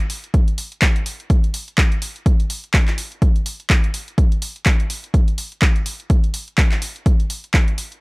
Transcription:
0.10 open hi-hat loud
0.24 closed hi-hat soft
0.34 kick loud
0.34 closed hi-hat medium
0.48 closed hi-hat soft
0.58 open hi-hat loud
0.72 closed hi-hat soft
0.82 kick loud
0.82 clap loud
0.82 closed hi-hat medium
0.96 closed hi-hat soft
1.06 open hi-hat loud
1.20 closed hi-hat soft
1.30 kick loud
1.30 closed hi-hat medium
1.44 closed hi-hat soft
1.54 open hi-hat loud
1.68 closed hi-hat soft
1.78 kick loud
1.78 clap loud
1.78 closed hi-hat medium
1.92 closed hi-hat soft
2.02 open hi-hat loud
2.16 closed hi-hat soft
2.26 kick loud
2.26 closed hi-hat medium
2.40 closed hi-hat soft
2.50 open hi-hat loud
2.64 closed hi-hat soft
2.74 kick loud
2.74 clap loud
2.74 closed hi-hat medium
2.88 clap soft
2.88 closed hi-hat soft
2.98 open hi-hat loud
3.12 closed hi-hat soft
3.22 kick loud
3.22 closed hi-hat medium
3.36 closed hi-hat soft
3.46 open hi-hat loud
3.60 closed hi-hat soft
3.70 kick loud
3.70 clap loud
3.70 closed hi-hat medium
3.84 closed hi-hat soft
3.94 open hi-hat loud
4.08 closed hi-hat soft
4.18 kick loud
4.18 closed hi-hat medium
4.32 closed hi-hat soft
4.42 open hi-hat loud
4.56 closed hi-hat soft
4.66 kick loud
4.66 clap loud
4.66 closed hi-hat medium
4.80 closed hi-hat soft
4.90 open hi-hat loud
5.04 closed hi-hat soft
5.14 kick loud
5.14 closed hi-hat medium
5.28 closed hi-hat soft
5.38 open hi-hat loud
5.52 closed hi-hat soft
5.62 kick loud
5.62 clap loud
5.62 closed hi-hat medium
5.76 closed hi-hat soft
5.86 open hi-hat loud
6.00 closed hi-hat soft
6.10 kick loud
6.10 closed hi-hat medium
6.24 closed hi-hat soft
6.34 open hi-hat loud
6.48 closed hi-hat soft
6.58 kick loud
6.58 clap loud
6.58 closed hi-hat medium
6.72 clap soft
6.72 closed hi-hat soft
6.82 open hi-hat loud
6.96 closed hi-hat soft
7.06 kick loud
7.06 closed hi-hat medium
7.20 closed hi-hat soft
7.30 open hi-hat loud
7.44 closed hi-hat soft
7.54 kick loud
7.54 clap loud
7.54 closed hi-hat medium
7.68 closed hi-hat soft
7.78 open hi-hat loud
7.92 closed hi-hat soft

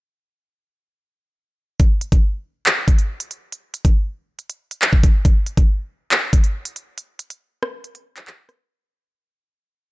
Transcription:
1.80 kick loud
1.80 closed hi-hat medium
2.01 closed hi-hat medium
2.12 kick loud
2.12 closed hi-hat medium
2.66 clap loud
2.88 kick medium
2.88 closed hi-hat medium
2.98 closed hi-hat medium
3.20 closed hi-hat medium
3.31 closed hi-hat medium
3.52 closed hi-hat medium
3.74 closed hi-hat medium
3.85 kick loud
3.85 closed hi-hat medium
4.39 closed hi-hat soft
4.50 closed hi-hat medium
4.71 closed hi-hat medium
4.82 clap loud
4.93 kick medium
5.03 kick medium
5.03 closed hi-hat medium
5.25 kick loud
5.25 closed hi-hat medium
5.46 closed hi-hat medium
5.57 kick loud
5.57 closed hi-hat medium
6.11 clap loud
6.33 kick medium
6.33 closed hi-hat medium
6.44 closed hi-hat medium
6.65 closed hi-hat medium
6.76 closed hi-hat medium
6.98 closed hi-hat medium
7.19 closed hi-hat medium
7.30 closed hi-hat medium
7.63 cross-stick loud
7.84 closed hi-hat medium
7.95 closed hi-hat medium
8.17 clap medium
8.17 closed hi-hat medium
8.27 clap loud
8.49 cross-stick medium
8.49 closed hi-hat medium

